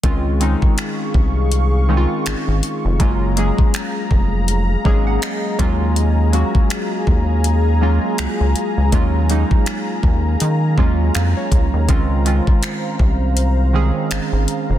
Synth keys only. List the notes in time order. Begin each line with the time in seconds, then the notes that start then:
0.03 D#3 G#3 C4 C#4 F4
0.40 D#3 G#3 C4 C#4 D#4
1.89 D#3 G#3 C4 C#4 D#4
1.97 F4
3.00 F#3 G#3 A#3 C#4 F4
3.37 F#3 G#3 A#3 C#4 G#4
4.85 F#3 G#3 A#3 C#4 G#4 A#5
5.07 F#5
5.23 D#5
5.59 F#3 G#3 A#3 C#4 F4
6.33 F#3 G#3 A#3 C#4 F#4
7.81 F#3 G#3 A#3 C#4 F4
8.92 F#3 G#3 A#3 C#4 F4
9.30 F#3 G#3 A#3 C#4 D#4
10.78 F#3 G#3 A#3 C#4 F4
11.15 F5
11.37 C#5
11.88 D#3 G#3 C4 C#4 F4
12.25 D#3 G#3 C4 C#4 F4
13.73 D#3 G#3 C4 C#4 G#4